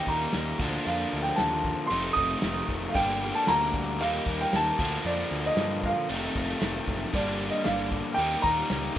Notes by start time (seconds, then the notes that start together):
Already playing: D#3 G3 A#3 D#4
0.07 D#2 A#5, kick
0.32 D#2, snare, open hi-hat
0.59 D2 D3 F3 A#3 D4, kick
0.85 F2 F5, open hi-hat
1.13 D2
1.23 G5
1.36 D#2 A5, snare, open hi-hat
1.64 kick
1.87 F2 C6, open hi-hat
1.91 F1 C3 D#3 A3 D#4
2.13 F1 D#6, kick
2.42 F1, snare, open hi-hat
2.68 F1, kick
2.89 F5
2.94 G1 G2 D3 G3 A#3 G5, kick, open hi-hat
2.98 D4
3.35 A5
3.47 D2 A#5, snare, open hi-hat
3.74 kick
3.99 D#2 D#3 G3 A#3 D#4 F5, open hi-hat
4.26 D#2, kick
4.41 G5
4.53 D#2 A5, snare, open hi-hat
4.78 D2 D3 F3 A#3 D4, kick
5.05 F2 D5, open hi-hat
5.31 D2
5.46 D#5
5.56 G2, snare, open hi-hat
5.83 F5, kick
6.09 F1 F2 C3 D#3 A3 D#4, open hi-hat
6.35 F1, kick
6.61 F1, snare, open hi-hat
6.87 F#1, kick
7.13 G1 G2 D3 G3 A#3 D4 D5, kick, open hi-hat
7.51 D#5
7.64 G1 F5, snare, open hi-hat
7.92 kick
8.14 D#2 D#3 G3 G5, open hi-hat
8.19 A#3 D#4
8.42 D#2 A#5, kick
8.70 C#2, snare, open hi-hat
8.95 D3